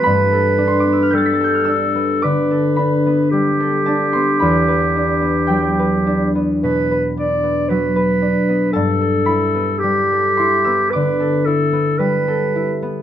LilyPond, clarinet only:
\new Staff \with { instrumentName = "Clarinet" } { \time 4/4 \key g \major \tempo 4 = 55 b'4 a'4 b'4 g'4~ | g'4.~ g'16 r16 b'8 d''8 b'4 | a'4 g'4 b'8 a'8 b'8. r16 | }